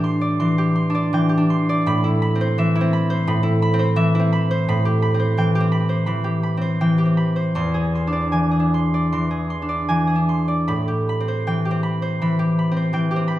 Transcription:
0.00 1.85 A2 soft
0.00 0.39 E3 soft
0.00 0.89 D4 soft
0.00 2.03 E4 soft
0.00 0.57 G4 soft
0.00 0.20 D5 soft
0.00 1.13 G5 soft
0.00 0.38 C6 medium
0.21 0.93 D5 soft
0.40 1.12 E3 soft
0.40 0.74 C6 medium
0.58 1.28 G4 medium
0.76 1.49 C6 medium
0.90 1.36 D4 medium
0.95 1.68 D5 medium
1.13 1.89 E3 medium
1.13 5.04 G5 medium
1.29 4.84 G4 soft
1.38 4.72 D4 soft
1.50 5.40 C6 medium
1.69 4.72 D5 medium
1.86 3.27 A2 medium
1.86 2.21 B5 medium
2.04 2.74 E4 soft
2.22 2.92 B5 medium
2.35 2.80 C4 soft
2.41 3.09 C5 medium
2.58 3.95 E3 medium
2.58 3.95 E5 medium
2.75 3.42 E4 medium
2.81 3.72 C4 medium
2.93 3.26 B5 medium
3.10 3.78 C5 medium
3.27 4.67 A2 medium
3.27 3.61 B5 medium
3.43 4.14 E4 medium
3.62 4.31 B5 medium
3.74 4.18 C4 medium
3.79 4.50 C5 medium
3.96 4.71 E3 soft
3.96 7.86 E5 medium
4.15 8.05 E4 medium
4.20 5.13 C4 soft
4.33 4.68 B5 medium
4.51 5.18 C5 medium
4.68 7.62 A2 medium
4.68 5.01 B5 medium
4.85 5.54 G4 soft
5.02 5.71 B5 medium
5.14 5.59 C4 soft
5.19 5.88 C5 soft
5.37 6.06 E3 soft
5.37 6.79 G5 medium
5.55 6.23 G4 medium
5.60 6.56 C4 medium
5.72 6.05 B5 medium
5.89 6.60 C5 medium
6.06 6.80 E3 soft
6.06 6.42 B5 medium
6.24 6.97 G4 soft
6.43 7.16 B5 medium
6.57 7.04 C4 soft
6.61 7.35 C5 soft
6.81 7.61 E3 soft
6.81 7.61 G5 medium
6.98 7.60 G4 soft
7.06 10.96 C4 soft
7.17 7.60 B5 soft
7.36 11.26 C5 soft
7.55 10.68 E2 soft
7.55 7.94 C6 medium
7.74 8.50 G#4 soft
7.95 8.73 C6 soft
8.07 8.59 D4 soft
8.13 8.93 D5 soft
8.32 9.12 E3 soft
8.32 9.87 G#5 soft
8.51 9.29 G#4 soft
8.60 9.61 D4 soft
8.74 9.11 C6 soft
8.94 9.68 D5 soft
9.13 9.88 E3 soft
9.13 9.49 C6 soft
9.31 10.06 G#4 soft
9.50 10.28 C6 soft
9.62 10.14 D4 soft
9.69 10.47 D5 soft
9.89 10.70 E3 soft
9.89 10.70 G#5 soft
10.07 10.70 G#4 soft
10.15 10.71 D4 soft
10.29 13.39 C6 soft
10.48 10.70 D5 soft
10.68 13.39 A2 medium
10.68 11.08 B5 medium
10.88 11.64 G4 soft
11.09 11.82 B5 soft
11.20 11.70 C4 soft
11.28 12.01 C5 soft
11.47 12.20 E3 soft
11.47 12.92 G5 soft
11.65 12.38 G4 soft
11.71 12.70 C4 soft
11.83 12.21 B5 medium
12.02 12.75 C5 soft
12.22 12.92 E3 soft
12.22 12.57 B5 medium
12.39 13.10 G4 soft
12.59 13.27 B5 soft
12.71 13.15 C4 soft
12.76 13.39 C5 soft
12.93 13.39 E3 soft
12.93 13.39 G5 soft
13.11 13.39 G4 soft
13.16 13.39 C4 soft
13.28 13.39 B5 soft

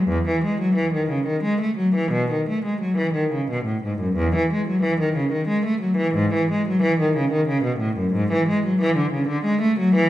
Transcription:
0.08 0.24 E2 medium
0.28 0.43 E3 medium
0.44 0.59 G#3 medium
0.61 0.76 F#3 medium
0.75 0.92 E3 medium
0.94 1.09 D#3 medium
1.10 1.26 C#3 medium
1.26 1.42 D#3 medium
1.43 1.59 G#3 medium
1.61 1.77 A3 medium
1.78 1.94 F#3 medium
1.95 2.12 E3 medium
2.12 2.29 B2 medium
2.31 2.47 D#3 medium
2.49 2.64 A3 medium
2.65 2.81 G#3 medium
2.81 2.97 F#3 medium
2.97 3.14 E3 medium
3.14 3.31 D#3 medium
3.32 3.48 C#3 medium
3.51 3.65 B2 medium
3.65 3.81 A2 medium
3.84 3.99 G#2 medium
3.99 4.15 F#2 medium
4.16 4.31 E2 medium
4.35 4.49 E3 medium
4.53 4.66 G#3 medium
4.68 4.82 F#3 medium
4.82 4.98 E3 medium
5.00 5.15 D#3 medium
5.16 5.31 C#3 medium
5.32 5.47 D#3 medium
5.48 5.64 G#3 medium
5.65 5.81 A3 medium
5.81 5.97 F#3 medium
5.97 6.14 E3 medium
6.15 6.32 G#2 medium
6.34 6.49 E3 medium
6.51 6.66 G#3 medium
6.68 6.83 F#3 medium
6.82 6.98 E3 medium
7.00 7.15 D#3 medium
7.17 7.32 C#3 medium
7.31 7.47 D#3 medium
7.48 7.64 C#3 medium
7.64 7.80 B2 medium
7.79 7.96 A2 medium
7.97 8.13 F#2 medium
8.13 8.29 G#2 medium
8.32 8.47 E3 medium
8.48 8.64 G#3 medium
8.66 8.81 F#3 medium
8.81 8.97 E3 medium
8.97 9.12 D3 medium
9.13 9.29 C#3 medium
9.28 9.45 D3 medium
9.45 9.61 G#3 medium
9.62 9.78 A3 medium
9.80 9.96 F#3 medium
9.95 10.09 E3 medium

